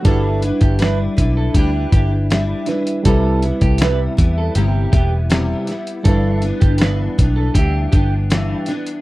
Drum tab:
HH |x-xxx-x-x-x-x-xx|x-xxx-x-x-x-x-xx|x-xxx-x-x-x-x-xx|
SD |----o-------o-o-|----o-------o-o-|----o-------o-o-|
BD |o--o--o-o-o-----|o--o--o---o-----|o--o--o-o-o-----|